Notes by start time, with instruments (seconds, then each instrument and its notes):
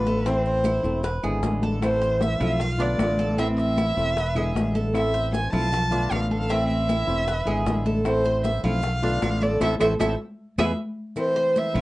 Already playing: fingered electric bass A1, nylon-string guitar D3 A3 B3 F4, violin B4
0.06 cuban tres A4, high bongo, high conga, maracas
0.25 nylon-string guitar E3 A3 C4 E4, cuban tres C4, violin C5, high bongo, high conga, maracas
0.45 violin C5, high conga, maracas
0.65 cuban tres E4, high bongo, high conga, claves, maracas
0.84 fingered electric bass E1, nylon-string guitar A3 C4 E4, high bongo, high conga, maracas
1.03 cuban tres B4, muted nylon-string guitar stroke, high bongo, high conga, maracas
1.23 fingered electric bass G#1, nylon-string guitar D3 G#3 B3 E4, cuban tres G#4, high bongo, high conga, claves, maracas
1.43 fingered electric bass A1, nylon-string guitar D3 G#3 B3 E4, high bongo, low bongo, high conga, maracas
1.62 cuban tres A4, high bongo, high conga, maracas
1.82 nylon-string guitar E3 A3 C4 E4, violin C5, high bongo, high conga, claves, maracas
2.01 cuban tres C5, high bongo, high conga, maracas
2.21 violin E5, high bongo, high conga, maracas
2.40 fingered electric bass B1, nylon-string guitar A3 C4 E4, cuban tres F4, high bongo, high conga, low conga, claves, maracas
2.60 violin F5, muted nylon-string guitar stroke, high bongo, maracas
2.79 nylon-string guitar D3 A3 B3 F4, cuban tres D4, violin D5, high conga, maracas
2.98 fingered electric bass A1, nylon-string guitar D3 A3 B3 F4, high bongo, low bongo, high conga, claves, maracas
3.19 cuban tres A4, high bongo, high conga, maracas
3.37 nylon-string guitar E3 A3 C4 E4, cuban tres C4, violin E5, high bongo, high conga, maracas
3.59 violin E5, maracas
3.77 cuban tres E4, high bongo, high conga, claves, maracas
3.97 fingered electric bass E1, nylon-string guitar A3 C4 E4, high bongo, high conga, maracas
4.16 cuban tres B4, muted nylon-string guitar stroke, high bongo, high conga, maracas
4.35 nylon-string guitar D3 G#3 B3 E4, cuban tres G#4, high bongo, high conga, claves, maracas
4.55 fingered electric bass A1, nylon-string guitar D3 G#3 B3 E4, high bongo, low bongo, high conga, maracas
4.75 cuban tres A4, high bongo, high conga, maracas
4.93 nylon-string guitar E3 A3 C4 E4, violin E5, high bongo, high conga, claves, maracas
5.14 cuban tres C5, high bongo, high conga, maracas
5.33 violin G#5, high bongo, high conga, maracas
5.52 fingered electric bass B1, nylon-string guitar A3 C4 E4, cuban tres F4, violin A5, high bongo, high conga, low conga, claves, maracas
5.72 muted nylon-string guitar stroke, high bongo, high conga, low conga, maracas
5.91 nylon-string guitar D3 A3 B3 F4, cuban tres D4, high conga, maracas
6.10 fingered electric bass A1, nylon-string guitar D3 A3 B3 F4, violin F5, high bongo, low bongo, high conga, claves, maracas
6.30 cuban tres A4, high bongo, high conga, maracas
6.49 nylon-string guitar E3 A3 C4 E4, cuban tres C4, violin E5, high bongo, high conga, maracas
6.68 violin E5, high conga, maracas
6.89 cuban tres E4, high bongo, high conga, claves, maracas
7.08 fingered electric bass E1, nylon-string guitar A3 C4 E4, high bongo, high conga, maracas
7.27 cuban tres B4, muted nylon-string guitar stroke, high bongo, high conga, maracas
7.46 fingered electric bass G#1, nylon-string guitar D3 G#3 B3 E4, cuban tres G#4, high bongo, high conga, claves, maracas
7.66 fingered electric bass A1, nylon-string guitar D3 G#3 B3 E4, high bongo, low bongo, high conga, maracas
7.86 cuban tres A4, high bongo, high conga, maracas
8.05 nylon-string guitar E3 A3 C4 E4, violin C5, high bongo, high conga, claves, maracas
8.25 cuban tres C5, high bongo, high conga, maracas
8.44 violin E5, high bongo, high conga, maracas
8.63 fingered electric bass B1, nylon-string guitar A3 C4 E4, cuban tres F4, violin F5, high bongo, high conga, low conga, claves, maracas
8.82 muted nylon-string guitar stroke, high bongo, maracas
9.03 nylon-string guitar D3 A3 B3 F4, cuban tres D4, high conga, maracas
9.22 fingered electric bass A1, nylon-string guitar D3 A3 B3 F4, high bongo, low bongo, high conga, claves, maracas
9.42 cuban tres A4, violin D5, high bongo, high conga, maracas
9.61 fingered electric bass A1, nylon-string guitar E3 A3 C4, cuban tres E4 A4 C5, violin E5, low bongo, high conga, claves, maracas
9.79 fingered electric bass A1, nylon-string guitar E3 A3 C4, cuban tres E4 A4 C5, violin E5, low bongo, high conga, claves, maracas
9.99 fingered electric bass A1, nylon-string guitar E3 A3 C4, cuban tres E4 A4 C5, violin E5, low bongo, high conga, claves, maracas
10.58 fingered electric bass E2, nylon-string guitar E3 G#3 B3, cuban tres E4 G#4 B4, violin E5, low bongo, high conga, claves, maracas
11.16 nylon-string guitar E3 A3 C4 E4, violin C5, cowbell, high conga, claves, maracas
11.36 cuban tres C5, high conga, maracas
11.56 violin E5, cowbell, high conga, maracas
11.74 fingered electric bass B1, nylon-string guitar A3 C4 E4, cuban tres F4, high conga, low conga, claves, maracas